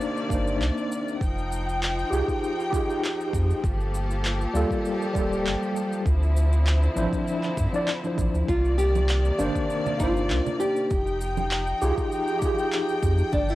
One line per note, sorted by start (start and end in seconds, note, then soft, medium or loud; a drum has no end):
0.00 1.18 C3 medium
0.00 1.18 D#3 medium
0.00 0.27 A#3 medium
0.00 1.18 A#3 medium
0.00 0.27 D4 medium
0.00 0.28 D#4 medium
0.00 0.28 C5 medium
0.00 1.18 D5 medium
0.00 shaker soft
0.17 shaker soft
0.29 0.61 G1 medium
0.29 1.19 A#3 medium
0.29 1.20 D4 medium
0.29 1.21 D#4 medium
0.29 kick medium
0.29 shaker medium
0.35 1.22 C5 medium
0.47 shaker soft
0.60 0.70 C2 loud
0.60 clap medium
0.60 shaker soft
0.78 shaker soft
0.92 shaker medium
1.08 shaker soft
1.21 2.04 F1 loud
1.21 8.45 F3 medium
1.21 3.62 D#4 medium
1.21 3.62 G5 medium
1.21 kick loud
1.21 shaker soft
1.38 shaker soft
1.52 shaker medium
1.69 shaker soft
1.83 clap loud
1.83 shaker soft
1.99 shaker soft
2.10 2.22 C2 medium
2.10 2.69 D#4 medium
2.10 2.69 F4 medium
2.10 2.69 G4 medium
2.10 2.70 G#4 medium
2.10 shaker medium
2.28 kick medium
2.28 shaker soft
2.44 shaker soft
2.60 shaker soft
2.70 3.61 D#4 medium
2.70 3.63 F4 medium
2.70 3.61 G4 medium
2.70 kick loud
2.70 shaker medium
2.76 3.64 G#4 medium
2.90 shaker soft
3.04 clap medium
3.04 shaker soft
3.21 shaker soft
3.33 3.53 F2 medium
3.33 kick loud
3.33 shaker medium
3.50 shaker soft
3.63 4.46 G1 loud
3.63 6.04 A#3 medium
3.63 6.04 G4 medium
3.63 6.04 A4 medium
3.63 kick loud
3.63 shaker soft
3.80 shaker soft
3.94 shaker medium
4.11 shaker soft
4.25 clap loud
4.25 shaker soft
4.41 shaker soft
4.54 4.64 D2 medium
4.54 5.11 G3 medium
4.54 5.12 A#3 medium
4.54 5.12 F4 medium
4.54 5.13 A4 loud
4.54 shaker medium
4.71 kick medium
4.71 shaker soft
4.85 shaker soft
5.02 shaker soft
5.13 5.47 D1 medium
5.13 6.04 G3 medium
5.13 6.04 A#3 medium
5.13 6.05 F4 medium
5.13 kick loud
5.13 shaker medium
5.19 6.06 A4 medium
5.33 shaker soft
5.45 5.56 G1 loud
5.45 clap medium
5.45 shaker soft
5.63 shaker soft
5.76 shaker medium
5.93 shaker soft
6.06 6.88 D2 loud
6.06 8.46 D3 medium
6.06 8.46 C4 medium
6.06 8.46 E4 medium
6.06 kick loud
6.06 shaker soft
6.23 shaker soft
6.37 shaker medium
6.53 shaker soft
6.67 clap loud
6.67 shaker soft
6.83 shaker soft
6.96 7.07 A1 medium
6.96 7.54 F3 medium
6.96 7.54 D4 medium
6.96 7.55 E4 medium
6.96 7.55 C5 medium
6.96 shaker medium
7.13 kick medium
7.13 shaker soft
7.28 shaker soft
7.43 clap soft
7.43 shaker soft
7.57 7.67 G2 medium
7.57 kick loud
7.57 shaker medium
7.73 7.89 F3 medium
7.73 7.89 D4 medium
7.73 7.89 E4 medium
7.73 7.90 D5 medium
7.73 shaker soft
7.88 clap medium
7.88 shaker soft
8.04 8.47 F3 medium
8.04 8.47 D4 medium
8.04 8.48 E4 medium
8.04 8.48 C5 medium
8.04 shaker soft
8.18 8.28 A1 medium
8.18 kick medium
8.18 shaker medium
8.34 8.43 D2 medium
8.34 shaker soft
8.48 9.31 C2 medium
8.48 10.89 C3 medium
8.48 10.89 D#3 medium
8.48 10.89 A#3 medium
8.48 8.77 F4 loud
8.48 10.89 D5 medium
8.48 kick loud
8.48 shaker soft
8.65 shaker soft
8.78 9.41 G4 loud
8.78 shaker medium
8.95 high conga medium
8.95 shaker soft
9.09 clap loud
9.09 shaker soft
9.25 shaker soft
9.38 9.49 G1 medium
9.38 9.97 D#3 medium
9.38 9.96 A#3 medium
9.38 10.01 D4 medium
9.38 9.97 D4 medium
9.38 9.98 C5 medium
9.38 shaker medium
9.56 kick medium
9.56 shaker soft
9.70 shaker soft
9.86 low conga medium
9.86 shaker soft
9.98 10.32 G1 medium
9.98 10.88 A#3 medium
9.98 10.89 D4 medium
9.98 10.90 D#4 medium
9.98 10.59 F4 loud
9.98 kick loud
9.98 shaker medium
10.04 10.91 C5 medium
10.17 shaker soft
10.30 10.40 C2 loud
10.30 clap medium
10.30 shaker soft
10.46 low conga medium
10.46 shaker soft
10.60 11.17 G4 medium
10.60 shaker medium
10.76 shaker soft
10.91 11.73 F1 loud
10.91 13.55 F3 medium
10.91 13.31 D#4 medium
10.91 13.55 G5 medium
10.91 kick loud
10.91 shaker soft
11.07 shaker soft
11.21 shaker medium
11.37 high conga medium
11.37 shaker soft
11.51 clap loud
11.51 shaker soft
11.67 shaker soft
11.82 11.92 C2 medium
11.82 12.39 D#4 medium
11.82 12.40 F4 medium
11.82 12.38 G4 medium
11.82 12.40 G#4 loud
11.82 shaker medium
11.98 kick medium
11.98 shaker soft
12.12 shaker soft
12.28 shaker soft
12.39 13.31 D#4 medium
12.39 13.30 G4 medium
12.39 kick medium
12.39 shaker medium
12.43 13.32 F4 medium
12.43 13.33 G#4 medium
12.58 shaker soft
12.72 clap medium
12.72 shaker soft
12.89 shaker soft
13.03 13.22 F2 loud
13.03 kick medium
13.03 shaker medium
13.18 shaker soft
13.32 13.55 G1 loud
13.32 13.55 A#3 medium
13.32 13.50 D4 loud
13.32 13.55 A4 medium
13.32 kick loud
13.32 shaker soft
13.49 13.55 E4 medium
13.49 shaker soft